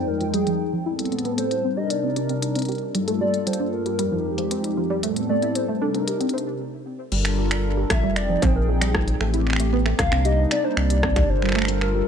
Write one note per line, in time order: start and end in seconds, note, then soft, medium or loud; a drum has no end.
0.00 0.85 F2 medium
0.00 0.85 F3 medium
0.00 0.85 G#3 medium
0.00 0.85 D#4 medium
0.00 0.85 G5 medium
0.08 0.33 A#4 medium
0.21 0.25 F3 medium
0.21 closed hi-hat soft
0.34 0.41 G3 loud
0.34 0.70 G#4 medium
0.34 closed hi-hat medium
0.47 0.57 F3 medium
0.47 closed hi-hat soft
0.73 0.80 F3 medium
0.86 1.63 A2 medium
0.86 3.96 G3 medium
0.86 1.63 B3 medium
0.86 1.63 C4 medium
0.86 0.93 E4 medium
0.86 1.63 A4 medium
0.99 closed hi-hat medium
1.05 closed hi-hat soft
1.12 1.16 A3 medium
1.12 closed hi-hat soft
1.19 closed hi-hat soft
1.25 1.32 B3 loud
1.25 closed hi-hat soft
1.38 1.49 A3 medium
1.38 1.78 C5 loud
1.38 closed hi-hat medium
1.51 closed hi-hat soft
1.64 2.93 C3 medium
1.64 1.71 C4 medium
1.64 2.93 D4 medium
1.64 2.93 D#4 medium
1.64 2.93 A#4 medium
1.77 1.84 G4 medium
1.77 1.91 D#5 loud
1.90 2.68 D5 loud
1.90 closed hi-hat medium
2.04 2.08 C4 medium
2.16 2.23 D4 loud
2.16 closed hi-hat medium
2.29 2.40 C4 medium
2.29 closed hi-hat soft
2.42 closed hi-hat medium
2.55 2.63 C4 medium
2.55 closed hi-hat soft
2.59 closed hi-hat soft
2.62 closed hi-hat soft
2.65 closed hi-hat soft
2.69 2.76 G4 medium
2.69 closed hi-hat soft
2.72 closed hi-hat soft
2.75 closed hi-hat soft
2.78 closed hi-hat soft
2.95 3.98 G2 medium
2.95 2.99 G3 medium
2.95 3.98 A#3 medium
2.95 3.98 F4 medium
2.95 3.98 A4 medium
2.95 closed hi-hat medium
3.08 3.15 A3 loud
3.08 closed hi-hat medium
3.21 3.31 G3 medium
3.21 3.48 D5 loud
3.34 closed hi-hat soft
3.47 3.54 G3 medium
3.47 3.72 C5 loud
3.47 closed hi-hat medium
3.53 closed hi-hat soft
3.60 3.67 D4 medium
3.73 4.73 A#4 loud
3.86 3.90 G3 medium
3.86 closed hi-hat soft
3.99 5.02 F2 medium
3.99 5.02 F3 medium
3.99 4.06 G3 loud
3.99 5.02 G#3 medium
3.99 5.02 D#4 medium
3.99 5.02 G4 medium
3.99 closed hi-hat medium
4.12 4.23 F3 medium
4.38 4.45 F3 medium
4.38 closed hi-hat soft
4.51 4.58 C4 medium
4.51 closed hi-hat medium
4.64 closed hi-hat soft
4.77 4.81 F3 medium
4.90 4.97 G3 loud
5.03 5.81 A2 medium
5.03 6.58 G3 medium
5.03 5.14 A3 medium
5.03 5.81 B3 medium
5.03 5.81 C4 medium
5.03 5.81 A4 medium
5.03 closed hi-hat medium
5.16 closed hi-hat medium
5.29 5.36 A3 medium
5.29 5.57 D5 loud
5.42 5.50 E4 medium
5.42 closed hi-hat soft
5.55 5.83 C5 loud
5.55 closed hi-hat medium
5.69 5.73 A3 medium
5.81 6.59 C3 medium
5.81 6.59 D4 medium
5.81 5.89 D4 loud
5.81 6.59 D#4 medium
5.81 6.09 A4 loud
5.81 6.59 A#4 medium
5.94 6.05 C4 medium
5.94 closed hi-hat soft
6.08 6.60 G4 medium
6.08 closed hi-hat medium
6.21 6.28 C4 medium
6.21 closed hi-hat soft
6.29 closed hi-hat soft
6.34 6.41 C5 medium
6.38 closed hi-hat soft
7.12 7.85 G1 loud
7.12 7.23 G3 medium
7.12 8.15 G3 medium
7.12 8.15 D4 medium
7.12 8.15 F4 medium
7.12 8.15 A4 medium
7.12 8.15 A#4 medium
7.12 crash medium
7.25 finger snap medium
7.25 closed hi-hat medium
7.38 7.45 G3 medium
7.51 7.58 D4 medium
7.51 finger snap medium
7.51 closed hi-hat medium
7.77 7.81 G3 medium
7.90 8.05 A#1 medium
7.90 7.97 A3 loud
7.90 8.14 E5 loud
7.90 finger snap medium
7.90 kick loud
7.90 cross-stick loud
7.90 closed hi-hat medium
8.03 8.37 F1 medium
8.03 8.14 G3 medium
8.16 9.20 F3 medium
8.16 9.97 C4 medium
8.16 9.20 D#4 medium
8.16 9.20 G#4 medium
8.16 8.44 D5 loud
8.16 9.20 G5 medium
8.16 finger snap medium
8.16 closed hi-hat medium
8.29 8.36 F3 medium
8.42 9.15 A#1 medium
8.42 8.49 C4 medium
8.42 8.57 C5 medium
8.42 kick loud
8.42 closed hi-hat medium
8.56 8.70 A#4 medium
8.68 8.73 F3 medium
8.68 9.08 G#4 medium
8.81 8.89 G3 loud
8.81 finger snap medium
8.81 closed hi-hat loud
8.94 9.05 F3 medium
8.94 kick loud
8.94 cross-stick loud
9.08 closed hi-hat medium
9.20 9.94 A1 medium
9.20 9.98 A3 medium
9.20 9.28 A3 medium
9.20 9.98 G4 medium
9.20 finger snap medium
9.34 9.41 E4 medium
9.34 closed hi-hat medium
9.47 finger snap soft
9.50 finger snap soft
9.53 finger snap medium
9.56 9.64 A3 medium
9.56 finger snap medium
9.56 closed hi-hat medium
9.73 9.80 B3 loud
9.86 9.97 A3 medium
9.86 finger snap medium
9.99 10.09 C2 medium
9.99 11.28 C3 medium
9.99 12.08 G3 medium
9.99 11.28 A#3 medium
9.99 12.08 D4 medium
9.99 11.28 D#4 medium
9.99 10.27 F5 loud
9.99 kick loud
9.99 cross-stick loud
9.99 closed hi-hat medium
10.12 10.46 C2 medium
10.12 10.19 C4 medium
10.12 finger snap medium
10.25 10.32 G4 medium
10.25 10.51 D#5 loud
10.25 closed hi-hat medium
10.51 10.55 C4 medium
10.51 10.66 D5 loud
10.51 finger snap medium
10.51 closed hi-hat medium
10.64 10.71 D4 loud
10.64 10.77 C5 loud
10.77 11.24 C2 loud
10.77 10.88 C4 medium
10.77 11.31 D5 loud
10.77 finger snap medium
10.90 closed hi-hat loud
11.03 11.10 C4 medium
11.03 kick loud
11.03 cross-stick loud
11.16 11.23 G4 medium
11.16 finger snap medium
11.16 kick loud
11.16 closed hi-hat medium
11.29 12.02 G1 loud
11.29 12.08 F4 medium
11.29 12.08 A4 medium
11.29 12.08 A#4 medium
11.29 11.81 C5 loud
11.42 11.47 G3 medium
11.42 finger snap soft
11.46 finger snap soft
11.49 finger snap soft
11.52 finger snap soft
11.55 11.63 A3 loud
11.55 finger snap medium
11.59 finger snap medium
11.62 finger snap medium
11.65 11.79 G3 medium
11.65 finger snap medium
11.65 closed hi-hat medium
11.81 12.08 A#4 medium
11.81 finger snap medium
11.95 12.02 G3 medium